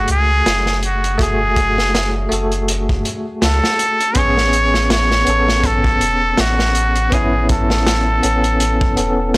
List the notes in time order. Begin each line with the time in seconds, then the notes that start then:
Already playing: A3 F#4 G#4
0.08 C#2 G#4, closed hi-hat
0.46 F#1, snare, closed hi-hat
0.66 snare
0.83 F#4, closed hi-hat
1.04 closed hi-hat
1.18 F#1 A3 F#4, kick, closed hi-hat
1.22 G#4
1.56 kick, closed hi-hat
1.78 snare
1.95 snare, closed hi-hat
2.29 F#1 A3 F#4, closed hi-hat
2.34 A4
2.52 closed hi-hat
2.68 closed hi-hat
2.89 kick
3.05 closed hi-hat
3.42 C#2 A4, snare, closed hi-hat
3.64 snare
3.79 closed hi-hat
4.00 closed hi-hat
4.14 A1 B3 C#4 C#5, kick, closed hi-hat
4.19 G#4
4.37 snare
4.53 closed hi-hat
4.74 snare
4.90 C#5, snare, closed hi-hat
5.11 snare
5.25 A1 B3 C#4, closed hi-hat
5.30 A4
5.48 snare
5.64 A4, kick, closed hi-hat
5.84 kick
6.01 E1, closed hi-hat
6.37 A1 F#4, snare, closed hi-hat
6.59 snare
6.75 closed hi-hat
6.95 closed hi-hat
7.10 A1 B3 C#4 G#4, kick, closed hi-hat
7.15 E4
7.49 A4, kick, closed hi-hat
7.70 snare
7.87 snare, closed hi-hat
8.23 A1 B3 C#4 A4, closed hi-hat
8.44 closed hi-hat
8.60 closed hi-hat
8.81 kick
8.96 E1 B3 C#4 A4, closed hi-hat
9.34 snare